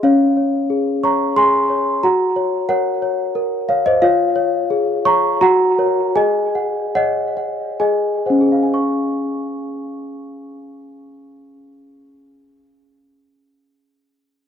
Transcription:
\new Staff \with { instrumentName = "Celesta" } { \time 3/4 \key des \major \tempo 4 = 79 << { <des'' f''>4. <bes'' des'''>8 <aes'' c'''>4 | <ges'' bes''>4 <des'' ges''>4. <des'' f''>16 <c'' ees''>16 | <des'' f''>4. <bes'' des'''>8 <ges'' bes''>4 | <ees'' aes''>4 <ees'' ges''>4 <ees'' aes''>4 |
<des' aes' f'' aes'' des'''>2.~ | <des' aes' f'' aes'' des'''>2. | } \\ { des'8 des''8 aes'8 des''8 aes'8 des''8 | ges'8 des''8 bes'8 des''8 bes'4 | f'8 des''8 aes'8 des''8 ges'8 <bes' des''>8 | aes'8 ges''8 des''8 ges''8 aes'8 <c'' ges''>8 |
r2. | r2. | } >> }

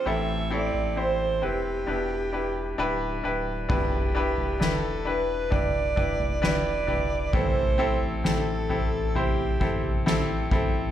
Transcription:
<<
  \new Staff \with { instrumentName = "Alto saxophone" } { \time 4/4 \key e \phrygian \tempo 4 = 66 e''8 d''8 c''8 g'2 r8 | g'4 a'8 b'8 d''4 d''4 | c''8 r8 a'4 g'4 r4 | }
  \new Staff \with { instrumentName = "Grand piano" } { \time 4/4 \key e \phrygian <c' e' g' a'>8 <c' e' g' a'>8 <c' e' g' c''>8 <c' e' g' b'>8 <d' e' g' b'>8 <d' e' g' b'>8 <d' e' g' b'>8 <d' e' g' b'>8 | <d' e' g' b'>8 <d' e' g' b'>8 <d' e' g' b'>8 <d' e' g' b'>8 <d' e' g' b'>8 <d' e' g' b'>8 <d' e' g' b'>8 <d' e' g' b'>8 | <c' e' g' a'>8 <c' e' g' a'>8 <c' e' g' a'>8 <c' e' g' a'>8 <c' e' g' c''>8 <c' e' g' a'>8 <c' e' g' a'>8 <c' e' g' a'>8 | }
  \new Staff \with { instrumentName = "Grand piano" } { \clef bass \time 4/4 \key e \phrygian <a, e>4. r8 b,4. r8 | b,4. r2 r8 | <a, e>4. r2 r8 | }
  \new Staff \with { instrumentName = "Sub bass" } { \clef bass \time 4/4 \key e \phrygian a,,8. a,,8. e,,8 e,,4 d,,8 d,,8 | e,,8. e,,16 e,,4. e,,4. | a,,8. a,,16 a,,4. a,,4 a,,8 | }
  \new DrumStaff \with { instrumentName = "Drums" } \drummode { \time 4/4 r4 r4 r4 r4 | <cymc bd tomfh>8. tomfh16 sn4 <bd tomfh>8 bd16 tomfh16 sn8 tomfh8 | <bd tomfh>4 sn8 tomfh8 tomfh8 bd16 tomfh16 sn8 <bd tomfh>8 | }
>>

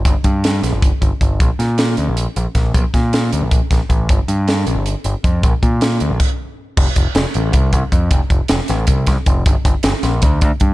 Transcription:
<<
  \new Staff \with { instrumentName = "Picked electric bass" } { \clef bass \time 7/8 \key f \mixolydian \tempo 4 = 156 g,,16 r16 g,4 bes,,16 g,,8 r16 g,,16 r16 g,,8 | bes,,16 r16 bes,4 d,16 bes,,8 r16 bes,,16 r16 bes,,8 | bes,,16 r16 bes,4 d,16 bes,,8 r16 bes,,16 r16 a,,8 | g,,16 r16 g,4 bes,,16 g,,8 r16 g,,16 r16 f,8 |
bes,,16 r16 bes,4 d,16 bes,,16 r4. | f,,16 r16 f,,16 r16 f,,16 r16 a,,8 c,8 c,16 r16 f,8 | f,,16 r16 f,,16 r16 f,,16 r16 a,,8 c,8 c,16 r16 f,,8 | g,,16 r16 g,,16 r16 g,,16 r16 bes,,8 d,8 d,16 r16 g,8 | }
  \new DrumStaff \with { instrumentName = "Drums" } \drummode { \time 7/8 <hh bd>8 <hh bd>8 <hh sn>8 <hh sn>8 <hh bd>8 <hh bd>8 <hh bd>8 | <hh bd>8 <hh sn>8 <hh sn>8 hh8 hh8 hh8 <hh bd sn>8 | <hh bd>8 <hh bd sn>8 <hh sn>8 hh8 <hh bd>8 <hh bd sn>8 <hh bd>8 | <hh bd>8 hh8 <hh sn>8 hh8 hh8 hh8 <hh bd>8 |
<hh bd>8 <hh bd>8 <hh sn>8 hh8 <cymc bd>4. | <cymc bd>8 <hh bd>8 <hh sn>8 hh8 <hh bd>8 <hh bd>8 <hh bd>8 | <hh bd>8 <hh bd>8 <hh sn>8 <hh sn>8 <hh bd>8 <hh bd sn>8 <hh bd>8 | <hh bd>8 <hh bd>8 <hh sn>8 <hh sn>8 <hh bd>8 <hh bd>8 <hh bd>8 | }
>>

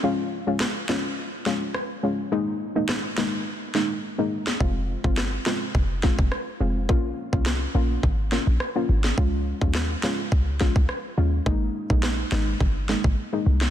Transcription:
<<
  \new Staff \with { instrumentName = "Synth pluck" } { \time 4/4 \key des \lydian \tempo 4 = 105 <aes des' f'>8. <aes des' f'>16 r8 <aes des' f'>16 r8. <aes des' f'>16 r8. <aes des' f'>16 r16 | <aes bes ees'>8. <aes bes ees'>8. <aes bes ees'>8 r8 <aes bes ees'>16 r8 <aes bes ees'>16 r8 | <aes c' f'>8. <aes c' f'>16 r8 <aes c' f'>16 r8. <aes c' f'>16 r8. <aes c' f'>16 r16 | <bes des' f'>8. <bes des' f'>8. <bes des' f'>8 r8 <bes des' f'>16 r8 <bes des' f'>16 r8 |
<aes des' f'>8. <aes des' f'>16 r8 <aes des' f'>16 r8. <aes des' f'>16 r8. <aes des' f'>16 r16 | <aes bes ees'>8. <aes bes ees'>8. <aes bes ees'>8 r8 <aes bes ees'>16 r8 <aes bes ees'>16 r8 | }
  \new Staff \with { instrumentName = "808-style bass" } { \clef bass \time 4/4 \key des \lydian r1 | r1 | f,,8. g,,8. r8 f,,8. f,,16 r8 f,,8 | bes,,8 r16 c,8. bes,,8 aes,,8. bes,,16 r8 aes,,8 |
des,8. ees,8. r8 des,8. des,16 r8 ees,8 | aes,,8 r16 bes,,8. aes,,8 g,,8. aes,,16 r8 c,8 | }
  \new DrumStaff \with { instrumentName = "Drums" } \drummode { \time 4/4 r4 <ss sn>8 <ss sn>8 r8 sn8 ss4 | r4 <ss sn>8 <ss sn>8 r8 sn8 r8. sn16 | bd8. bd16 <ss sn>8 <ss sn>8 bd8 <bd sn>16 bd16 ss4 | bd8. bd16 <ss sn>4 bd8 sn8 ss8. sn16 |
bd8. bd16 <ss sn>8 <ss sn>8 bd8 <bd sn>16 bd16 ss4 | bd8. bd16 <ss sn>8 <ss sn>8 bd8 sn16 bd16 r8. sn16 | }
>>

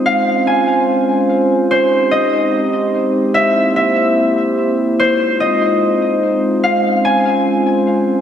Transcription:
<<
  \new Staff \with { instrumentName = "Harp" } { \time 4/4 \key f \minor \tempo 4 = 146 f''4 aes''4 r2 | c''4 ees''4 r2 | e''4 e''4 r2 | c''4 ees''4 r2 |
f''4 aes''4 r2 | }
  \new Staff \with { instrumentName = "Glass harmonica" } { \time 4/4 \key f \minor << { <c' c''>1~ | <c' c''>1~ | <c' c''>1 | <c' c''>1~ |
<c' c''>1 | } \\ { f'1 | g'1~ | g'1 | f'1~ |
f'1 | } >> }
  \new Staff \with { instrumentName = "Glass harmonica" } { \time 4/4 \key f \minor <aes des'>1 | <aes ees'>1 | <bes e'>1 | <aes ees'>1 |
<aes des'>1 | }
>>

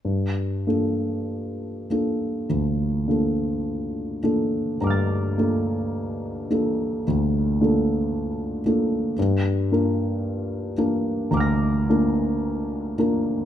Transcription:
\new Staff \with { instrumentName = "Grand piano" } { \time 4/4 \key g \minor \tempo 4 = 53 << { r1 | <bes'' d''' f''' a'''>1 | r2 <bes'' d''' f''' bes'''>2 | } \\ { g,8 <bes d' f' a'>4 <bes d' f' a'>8 d,8 <bes d' f' a'>4 <bes d' f' a'>8 | g,8 <bes d' f' a'>4 <bes d' f' a'>8 d,8 <bes d' f' a'>4 <bes d' f' a'>8 | g,8 <bes d' f' bes'>4 <bes d' f' bes'>8 d,8 <bes d' f' bes'>4 <bes d' f' bes'>8 | } >> }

